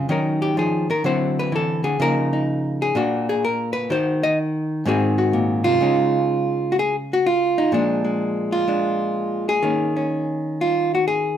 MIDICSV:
0, 0, Header, 1, 2, 480
1, 0, Start_track
1, 0, Key_signature, -5, "major"
1, 0, Tempo, 477327
1, 82, Time_signature, 4, 2, 24, 8
1, 11437, End_track
2, 0, Start_track
2, 0, Title_t, "Hollow-body jazz guitar"
2, 0, Program_c, 0, 26
2, 90, Note_on_c, 0, 51, 77
2, 98, Note_on_c, 0, 54, 40
2, 102, Note_on_c, 0, 61, 48
2, 111, Note_on_c, 0, 63, 48
2, 118, Note_on_c, 0, 70, 47
2, 417, Note_off_c, 0, 70, 0
2, 421, Note_on_c, 0, 67, 81
2, 567, Note_off_c, 0, 54, 0
2, 569, Note_off_c, 0, 67, 0
2, 574, Note_on_c, 0, 53, 60
2, 591, Note_on_c, 0, 68, 70
2, 892, Note_off_c, 0, 51, 0
2, 892, Note_off_c, 0, 53, 0
2, 901, Note_off_c, 0, 68, 0
2, 903, Note_on_c, 0, 51, 59
2, 910, Note_on_c, 0, 70, 78
2, 1033, Note_off_c, 0, 61, 0
2, 1037, Note_off_c, 0, 63, 0
2, 1048, Note_on_c, 0, 50, 74
2, 1050, Note_off_c, 0, 51, 0
2, 1051, Note_off_c, 0, 70, 0
2, 1055, Note_on_c, 0, 54, 53
2, 1061, Note_on_c, 0, 60, 49
2, 1066, Note_on_c, 0, 72, 76
2, 1072, Note_on_c, 0, 64, 51
2, 1377, Note_off_c, 0, 72, 0
2, 1402, Note_on_c, 0, 71, 81
2, 1526, Note_off_c, 0, 54, 0
2, 1530, Note_on_c, 0, 52, 61
2, 1539, Note_off_c, 0, 71, 0
2, 1565, Note_on_c, 0, 69, 82
2, 1838, Note_off_c, 0, 50, 0
2, 1848, Note_off_c, 0, 69, 0
2, 1848, Note_on_c, 0, 50, 60
2, 1850, Note_off_c, 0, 52, 0
2, 1852, Note_on_c, 0, 68, 72
2, 1992, Note_off_c, 0, 60, 0
2, 1997, Note_off_c, 0, 64, 0
2, 2002, Note_off_c, 0, 68, 0
2, 2003, Note_off_c, 0, 50, 0
2, 2007, Note_on_c, 0, 49, 78
2, 2013, Note_on_c, 0, 53, 40
2, 2022, Note_on_c, 0, 58, 51
2, 2028, Note_on_c, 0, 63, 39
2, 2029, Note_on_c, 0, 70, 98
2, 2330, Note_off_c, 0, 63, 0
2, 2342, Note_on_c, 0, 63, 51
2, 2819, Note_off_c, 0, 70, 0
2, 2836, Note_on_c, 0, 68, 91
2, 2945, Note_off_c, 0, 49, 0
2, 2946, Note_off_c, 0, 53, 0
2, 2949, Note_off_c, 0, 63, 0
2, 2952, Note_off_c, 0, 58, 0
2, 2967, Note_on_c, 0, 46, 78
2, 2974, Note_on_c, 0, 58, 51
2, 2975, Note_off_c, 0, 68, 0
2, 2979, Note_on_c, 0, 62, 53
2, 2985, Note_on_c, 0, 66, 76
2, 3297, Note_off_c, 0, 66, 0
2, 3312, Note_on_c, 0, 68, 82
2, 3453, Note_off_c, 0, 68, 0
2, 3465, Note_on_c, 0, 70, 81
2, 3746, Note_off_c, 0, 70, 0
2, 3750, Note_on_c, 0, 71, 85
2, 3907, Note_off_c, 0, 58, 0
2, 3910, Note_off_c, 0, 62, 0
2, 3912, Note_off_c, 0, 71, 0
2, 3922, Note_off_c, 0, 46, 0
2, 3923, Note_on_c, 0, 51, 71
2, 3928, Note_on_c, 0, 66, 52
2, 3940, Note_on_c, 0, 72, 89
2, 4253, Note_off_c, 0, 72, 0
2, 4258, Note_on_c, 0, 75, 105
2, 4406, Note_off_c, 0, 75, 0
2, 4864, Note_off_c, 0, 66, 0
2, 4880, Note_off_c, 0, 51, 0
2, 4882, Note_on_c, 0, 44, 76
2, 4891, Note_on_c, 0, 51, 61
2, 4899, Note_on_c, 0, 60, 63
2, 4905, Note_on_c, 0, 66, 65
2, 4912, Note_on_c, 0, 68, 68
2, 5199, Note_off_c, 0, 66, 0
2, 5211, Note_on_c, 0, 66, 61
2, 5363, Note_on_c, 0, 46, 60
2, 5671, Note_off_c, 0, 68, 0
2, 5675, Note_on_c, 0, 65, 100
2, 5682, Note_off_c, 0, 46, 0
2, 5686, Note_on_c, 0, 48, 63
2, 5822, Note_off_c, 0, 44, 0
2, 5824, Note_off_c, 0, 66, 0
2, 5830, Note_off_c, 0, 60, 0
2, 5834, Note_off_c, 0, 48, 0
2, 5838, Note_on_c, 0, 49, 62
2, 5846, Note_off_c, 0, 51, 0
2, 5850, Note_on_c, 0, 56, 45
2, 5856, Note_on_c, 0, 61, 41
2, 5864, Note_on_c, 0, 63, 44
2, 6753, Note_off_c, 0, 63, 0
2, 6757, Note_on_c, 0, 66, 76
2, 6795, Note_off_c, 0, 65, 0
2, 6798, Note_off_c, 0, 66, 0
2, 6831, Note_on_c, 0, 68, 91
2, 6991, Note_off_c, 0, 68, 0
2, 7173, Note_on_c, 0, 66, 85
2, 7304, Note_off_c, 0, 66, 0
2, 7306, Note_on_c, 0, 65, 82
2, 7623, Note_on_c, 0, 63, 77
2, 7742, Note_off_c, 0, 49, 0
2, 7751, Note_off_c, 0, 61, 0
2, 7763, Note_on_c, 0, 46, 66
2, 7765, Note_off_c, 0, 56, 0
2, 7769, Note_on_c, 0, 53, 45
2, 7770, Note_off_c, 0, 63, 0
2, 7773, Note_off_c, 0, 65, 0
2, 7774, Note_on_c, 0, 56, 45
2, 7786, Note_on_c, 0, 62, 76
2, 8086, Note_off_c, 0, 56, 0
2, 8090, Note_on_c, 0, 56, 46
2, 8572, Note_on_c, 0, 65, 81
2, 8715, Note_off_c, 0, 62, 0
2, 8721, Note_off_c, 0, 56, 0
2, 8725, Note_on_c, 0, 56, 50
2, 8731, Note_on_c, 0, 62, 43
2, 9531, Note_off_c, 0, 65, 0
2, 9542, Note_on_c, 0, 68, 103
2, 9668, Note_off_c, 0, 62, 0
2, 9669, Note_off_c, 0, 53, 0
2, 9679, Note_on_c, 0, 51, 69
2, 9682, Note_off_c, 0, 56, 0
2, 9685, Note_off_c, 0, 46, 0
2, 9686, Note_on_c, 0, 58, 46
2, 9693, Note_on_c, 0, 61, 45
2, 10009, Note_off_c, 0, 61, 0
2, 10021, Note_on_c, 0, 61, 48
2, 10652, Note_off_c, 0, 68, 0
2, 10672, Note_on_c, 0, 65, 76
2, 10984, Note_off_c, 0, 65, 0
2, 11007, Note_on_c, 0, 66, 74
2, 11134, Note_off_c, 0, 66, 0
2, 11138, Note_on_c, 0, 68, 84
2, 11437, Note_off_c, 0, 51, 0
2, 11437, Note_off_c, 0, 58, 0
2, 11437, Note_off_c, 0, 61, 0
2, 11437, Note_off_c, 0, 68, 0
2, 11437, End_track
0, 0, End_of_file